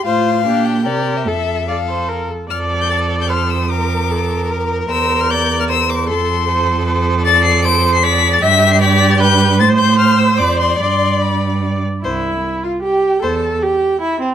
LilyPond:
<<
  \new Staff \with { instrumentName = "Violin" } { \time 3/4 \key f \major \tempo 4 = 152 f''4. g''8 d''8. e''16 | e''4 f''4 r4 | f'''8. g'''16 a'''8. g'''16 f'''8 e'''8 | d'''2~ d'''8 r8 |
e'''8. f'''16 g'''8. f'''16 e'''8 d'''8 | c'''2~ c'''8 r8 | \key c \major a'''8 c''''8 d''''8. c''''16 b'''8. a'''16 | b'''8. c''''16 b'''8. a'''16 g'''4 |
a'''8 g'''8 f'''8 e'''8 d'''8 c'''8 | c'''4 b''4 r4 | e''4. f''8 g''4 | a''4 g''4 e''8 c''8 | }
  \new Staff \with { instrumentName = "Viola" } { \time 3/4 \key f \major f'4 d'4 bes'4 | a'4 d''8 c''8 bes'8 a'8 | d''2 c''4 | bes'4 a'4 bes'4 |
c''4 d''4 c''4 | a'4 c''4 c''4 | \key c \major d''4 c''4 d''4 | e''4 d''4 b'4 |
c''2. | d''2~ d''8 r8 | e'4. f'8 g'4 | a'4 g'4 e'8 c'8 | }
  \new Staff \with { instrumentName = "Violin" } { \time 3/4 \key f \major c''4 g'4 g'4 | a'4 a'4. r8 | a'2. | bes'2.~ |
bes'2. | a'2.~ | \key c \major a'2. | g'2. |
c''2 d''4~ | d''2~ d''8 r8 | c''8 r2 r8 | c''8 r2 r8 | }
  \new Staff \with { instrumentName = "Cello" } { \clef bass \time 3/4 \key f \major a,4 bes,4 c4 | f,2~ f,8 r8 | f,2.~ | f,2. |
e,2. | f,2.~ | \key c \major f,2. | g,2. |
a,2 f,4 | g,2~ g,8 r8 | c,4 r2 | e,4 r2 | }
>>